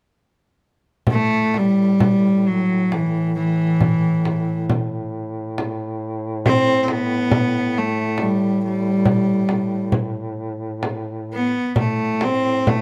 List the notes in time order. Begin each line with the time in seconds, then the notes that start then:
1.07 A2 A3, frame drum
1.54 G3, frame drum
2.00 frame drum
2.48 F#3
2.92 E3, frame drum
3.35 E3
3.81 frame drum
4.25 frame drum
4.70 frame drum
5.58 frame drum
6.46 C4, frame drum
6.83 C4
6.88 B3, frame drum
7.31 frame drum
7.77 A3
8.18 G3, frame drum
8.64 G3
9.05 frame drum
9.49 frame drum
9.92 frame drum
10.83 frame drum
11.33 B3
11.76 A2 A3, frame drum
12.21 C4, frame drum
12.67 A3, frame drum